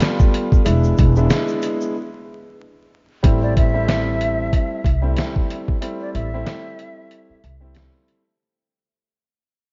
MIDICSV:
0, 0, Header, 1, 6, 480
1, 0, Start_track
1, 0, Key_signature, 0, "minor"
1, 0, Tempo, 645161
1, 488, Time_signature, 4, 2, 24, 8
1, 7234, End_track
2, 0, Start_track
2, 0, Title_t, "Flute"
2, 0, Program_c, 0, 73
2, 2543, Note_on_c, 0, 74, 77
2, 2637, Note_off_c, 0, 74, 0
2, 2656, Note_on_c, 0, 76, 97
2, 3959, Note_off_c, 0, 76, 0
2, 4466, Note_on_c, 0, 74, 77
2, 4559, Note_off_c, 0, 74, 0
2, 4568, Note_on_c, 0, 76, 106
2, 5738, Note_off_c, 0, 76, 0
2, 7234, End_track
3, 0, Start_track
3, 0, Title_t, "Grand piano"
3, 0, Program_c, 1, 0
3, 0, Note_on_c, 1, 55, 100
3, 0, Note_on_c, 1, 57, 88
3, 0, Note_on_c, 1, 59, 94
3, 0, Note_on_c, 1, 65, 112
3, 446, Note_off_c, 1, 55, 0
3, 447, Note_off_c, 1, 57, 0
3, 448, Note_off_c, 1, 59, 0
3, 449, Note_off_c, 1, 65, 0
3, 482, Note_on_c, 1, 56, 97
3, 484, Note_on_c, 1, 59, 87
3, 485, Note_on_c, 1, 62, 88
3, 487, Note_on_c, 1, 64, 107
3, 829, Note_off_c, 1, 56, 0
3, 830, Note_off_c, 1, 59, 0
3, 831, Note_off_c, 1, 62, 0
3, 832, Note_off_c, 1, 64, 0
3, 870, Note_on_c, 1, 56, 99
3, 872, Note_on_c, 1, 59, 90
3, 874, Note_on_c, 1, 62, 88
3, 876, Note_on_c, 1, 64, 104
3, 952, Note_off_c, 1, 56, 0
3, 955, Note_off_c, 1, 59, 0
3, 957, Note_off_c, 1, 62, 0
3, 959, Note_off_c, 1, 64, 0
3, 964, Note_on_c, 1, 56, 109
3, 966, Note_on_c, 1, 59, 86
3, 968, Note_on_c, 1, 62, 90
3, 970, Note_on_c, 1, 64, 112
3, 1446, Note_off_c, 1, 56, 0
3, 1447, Note_off_c, 1, 59, 0
3, 1448, Note_off_c, 1, 62, 0
3, 1449, Note_off_c, 1, 64, 0
3, 2400, Note_on_c, 1, 55, 92
3, 2403, Note_on_c, 1, 57, 82
3, 2405, Note_on_c, 1, 60, 86
3, 2407, Note_on_c, 1, 64, 101
3, 2748, Note_off_c, 1, 55, 0
3, 2750, Note_off_c, 1, 57, 0
3, 2751, Note_off_c, 1, 60, 0
3, 2752, Note_off_c, 1, 64, 0
3, 2780, Note_on_c, 1, 55, 90
3, 2782, Note_on_c, 1, 57, 80
3, 2783, Note_on_c, 1, 60, 83
3, 2786, Note_on_c, 1, 64, 109
3, 2868, Note_off_c, 1, 55, 0
3, 2869, Note_off_c, 1, 57, 0
3, 2871, Note_off_c, 1, 60, 0
3, 2874, Note_off_c, 1, 64, 0
3, 2879, Note_on_c, 1, 55, 92
3, 2880, Note_on_c, 1, 57, 91
3, 2882, Note_on_c, 1, 60, 87
3, 2885, Note_on_c, 1, 64, 107
3, 3554, Note_off_c, 1, 55, 0
3, 3555, Note_off_c, 1, 57, 0
3, 3556, Note_off_c, 1, 60, 0
3, 3557, Note_off_c, 1, 64, 0
3, 3733, Note_on_c, 1, 55, 88
3, 3735, Note_on_c, 1, 57, 80
3, 3737, Note_on_c, 1, 60, 82
3, 3739, Note_on_c, 1, 64, 102
3, 4281, Note_off_c, 1, 55, 0
3, 4282, Note_off_c, 1, 57, 0
3, 4283, Note_off_c, 1, 60, 0
3, 4284, Note_off_c, 1, 64, 0
3, 4323, Note_on_c, 1, 55, 90
3, 4325, Note_on_c, 1, 57, 75
3, 4327, Note_on_c, 1, 60, 84
3, 4329, Note_on_c, 1, 64, 92
3, 4670, Note_off_c, 1, 55, 0
3, 4671, Note_off_c, 1, 57, 0
3, 4672, Note_off_c, 1, 60, 0
3, 4673, Note_off_c, 1, 64, 0
3, 4714, Note_on_c, 1, 55, 87
3, 4716, Note_on_c, 1, 57, 89
3, 4718, Note_on_c, 1, 60, 92
3, 4721, Note_on_c, 1, 64, 115
3, 4787, Note_off_c, 1, 55, 0
3, 4789, Note_off_c, 1, 57, 0
3, 4791, Note_off_c, 1, 60, 0
3, 4793, Note_off_c, 1, 64, 0
3, 4799, Note_on_c, 1, 55, 94
3, 4801, Note_on_c, 1, 57, 95
3, 4803, Note_on_c, 1, 60, 89
3, 4804, Note_on_c, 1, 64, 110
3, 5474, Note_off_c, 1, 55, 0
3, 5475, Note_off_c, 1, 57, 0
3, 5476, Note_off_c, 1, 60, 0
3, 5477, Note_off_c, 1, 64, 0
3, 5656, Note_on_c, 1, 55, 84
3, 5658, Note_on_c, 1, 57, 77
3, 5661, Note_on_c, 1, 60, 86
3, 5662, Note_on_c, 1, 64, 103
3, 6097, Note_off_c, 1, 55, 0
3, 6098, Note_off_c, 1, 57, 0
3, 6099, Note_off_c, 1, 60, 0
3, 6100, Note_off_c, 1, 64, 0
3, 7234, End_track
4, 0, Start_track
4, 0, Title_t, "Upright bass"
4, 0, Program_c, 2, 32
4, 493, Note_on_c, 2, 28, 104
4, 698, Note_off_c, 2, 28, 0
4, 736, Note_on_c, 2, 28, 106
4, 940, Note_off_c, 2, 28, 0
4, 2412, Note_on_c, 2, 33, 103
4, 3340, Note_off_c, 2, 33, 0
4, 3607, Note_on_c, 2, 36, 90
4, 3814, Note_off_c, 2, 36, 0
4, 4573, Note_on_c, 2, 33, 95
4, 4778, Note_off_c, 2, 33, 0
4, 5534, Note_on_c, 2, 36, 94
4, 5857, Note_off_c, 2, 36, 0
4, 7234, End_track
5, 0, Start_track
5, 0, Title_t, "Muted upright bass strokes"
5, 5430, Note_on_c, 9, 29, 45
5, 5505, Note_off_c, 9, 29, 0
5, 7234, End_track
6, 0, Start_track
6, 0, Title_t, "Drums"
6, 2, Note_on_c, 9, 42, 97
6, 7, Note_on_c, 9, 82, 71
6, 16, Note_on_c, 9, 38, 118
6, 77, Note_off_c, 9, 42, 0
6, 81, Note_off_c, 9, 82, 0
6, 91, Note_off_c, 9, 38, 0
6, 145, Note_on_c, 9, 82, 52
6, 146, Note_on_c, 9, 36, 112
6, 219, Note_off_c, 9, 82, 0
6, 221, Note_off_c, 9, 36, 0
6, 253, Note_on_c, 9, 42, 81
6, 328, Note_off_c, 9, 42, 0
6, 387, Note_on_c, 9, 36, 99
6, 394, Note_on_c, 9, 82, 41
6, 461, Note_off_c, 9, 36, 0
6, 468, Note_off_c, 9, 82, 0
6, 489, Note_on_c, 9, 42, 112
6, 489, Note_on_c, 9, 82, 71
6, 564, Note_off_c, 9, 42, 0
6, 564, Note_off_c, 9, 82, 0
6, 624, Note_on_c, 9, 82, 49
6, 698, Note_off_c, 9, 82, 0
6, 726, Note_on_c, 9, 82, 54
6, 734, Note_on_c, 9, 36, 94
6, 734, Note_on_c, 9, 42, 77
6, 800, Note_off_c, 9, 82, 0
6, 808, Note_off_c, 9, 36, 0
6, 808, Note_off_c, 9, 42, 0
6, 863, Note_on_c, 9, 82, 54
6, 937, Note_off_c, 9, 82, 0
6, 968, Note_on_c, 9, 82, 69
6, 969, Note_on_c, 9, 42, 90
6, 971, Note_on_c, 9, 38, 113
6, 1042, Note_off_c, 9, 82, 0
6, 1044, Note_off_c, 9, 42, 0
6, 1046, Note_off_c, 9, 38, 0
6, 1102, Note_on_c, 9, 82, 55
6, 1176, Note_off_c, 9, 82, 0
6, 1207, Note_on_c, 9, 82, 60
6, 1212, Note_on_c, 9, 42, 83
6, 1281, Note_off_c, 9, 82, 0
6, 1286, Note_off_c, 9, 42, 0
6, 1346, Note_on_c, 9, 82, 54
6, 1420, Note_off_c, 9, 82, 0
6, 2410, Note_on_c, 9, 36, 124
6, 2410, Note_on_c, 9, 42, 112
6, 2484, Note_off_c, 9, 36, 0
6, 2484, Note_off_c, 9, 42, 0
6, 2654, Note_on_c, 9, 42, 74
6, 2655, Note_on_c, 9, 36, 95
6, 2729, Note_off_c, 9, 36, 0
6, 2729, Note_off_c, 9, 42, 0
6, 2890, Note_on_c, 9, 42, 86
6, 2892, Note_on_c, 9, 38, 105
6, 2964, Note_off_c, 9, 42, 0
6, 2966, Note_off_c, 9, 38, 0
6, 3131, Note_on_c, 9, 42, 77
6, 3205, Note_off_c, 9, 42, 0
6, 3369, Note_on_c, 9, 36, 91
6, 3370, Note_on_c, 9, 42, 96
6, 3443, Note_off_c, 9, 36, 0
6, 3445, Note_off_c, 9, 42, 0
6, 3604, Note_on_c, 9, 36, 86
6, 3614, Note_on_c, 9, 42, 72
6, 3679, Note_off_c, 9, 36, 0
6, 3688, Note_off_c, 9, 42, 0
6, 3843, Note_on_c, 9, 42, 97
6, 3857, Note_on_c, 9, 38, 112
6, 3918, Note_off_c, 9, 42, 0
6, 3931, Note_off_c, 9, 38, 0
6, 3987, Note_on_c, 9, 36, 106
6, 4062, Note_off_c, 9, 36, 0
6, 4095, Note_on_c, 9, 42, 76
6, 4169, Note_off_c, 9, 42, 0
6, 4228, Note_on_c, 9, 36, 97
6, 4302, Note_off_c, 9, 36, 0
6, 4330, Note_on_c, 9, 42, 109
6, 4404, Note_off_c, 9, 42, 0
6, 4575, Note_on_c, 9, 42, 72
6, 4649, Note_off_c, 9, 42, 0
6, 4810, Note_on_c, 9, 42, 84
6, 4811, Note_on_c, 9, 38, 104
6, 4884, Note_off_c, 9, 42, 0
6, 4886, Note_off_c, 9, 38, 0
6, 5051, Note_on_c, 9, 42, 77
6, 5126, Note_off_c, 9, 42, 0
6, 5290, Note_on_c, 9, 42, 95
6, 5364, Note_off_c, 9, 42, 0
6, 5533, Note_on_c, 9, 42, 67
6, 5608, Note_off_c, 9, 42, 0
6, 5763, Note_on_c, 9, 42, 92
6, 5777, Note_on_c, 9, 38, 113
6, 5837, Note_off_c, 9, 42, 0
6, 5851, Note_off_c, 9, 38, 0
6, 6013, Note_on_c, 9, 42, 75
6, 6088, Note_off_c, 9, 42, 0
6, 7234, End_track
0, 0, End_of_file